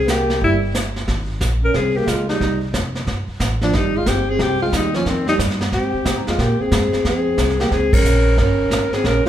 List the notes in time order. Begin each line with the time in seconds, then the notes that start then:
Already playing: C2 C4 G#4
0.08 A#3 G4, snare, hi-hat pedal
0.30 snare
0.41 G1 G3 E4, brush sweep, kick
0.75 snare, hi-hat pedal
0.96 snare
1.08 G#1, brush sweep, kick, snare
1.40 A#1, kick, snare, hi-hat pedal
1.63 C#4 A#4
1.74 C2 C4 G#4, brush sweep, kick, snare
1.97 A#3 G4
2.07 C#2 G#3 F4, kick, snare, hi-hat pedal
2.29 G3 D#4, snare
2.40 C2, brush sweep, kick, snare
2.73 F1, kick, snare, hi-hat pedal
2.95 snare
3.07 G1, brush sweep, kick, snare
3.28 muted upright bass stroke
3.40 A1, kick, snare, hi-hat pedal
3.62 F3 D4, snare
3.73 G#1 G3 D#4, brush sweep, kick, snare
3.96 G#3 F4
4.06 G1 C4 G4, kick, snare, hi-hat pedal
4.27 C4 G#4
4.39 C2 C4 G4, brush sweep, kick, snare
4.62 G#3 F4
4.72 D#2 G3 D#4, kick, snare, hi-hat pedal
4.94 F3 C#4, snare
5.05 F2 D#3 C4, brush sweep, kick, snare
5.27 G3 D#4, snare
5.39 G2, kick, snare, hi-hat pedal
5.50 snare
5.61 snare
5.72 G#2 C4 G4, brush sweep, kick, snare
5.94 muted upright bass stroke
6.05 C3, kick, snare, hi-hat pedal
6.17 G#2
6.27 F2 G#3 F4, snare
6.38 A#2 A#3 G4, brush sweep, kick, snare
6.60 C4 G#4, muted upright bass stroke
6.71 G#2, kick, snare, hi-hat pedal
6.93 muted upright bass stroke, snare
7.04 F2 C4 G#4, brush sweep, kick, snare
7.38 C2, kick, snare, hi-hat pedal
7.49 snare
7.60 A#3 G4, snare
7.71 C#2 C4 G#4, brush sweep, kick, snare
7.93 C#4 A#4, kick, ride
8.04 A#1, hi-hat pedal
8.37 G1 C#4 A#4, brush sweep, kick, snare
8.70 G#1, kick, snare, hi-hat pedal
8.92 C4 G#4, snare
9.04 A#1 C#4 A#4, brush sweep, kick, snare
9.26 muted upright bass stroke, snare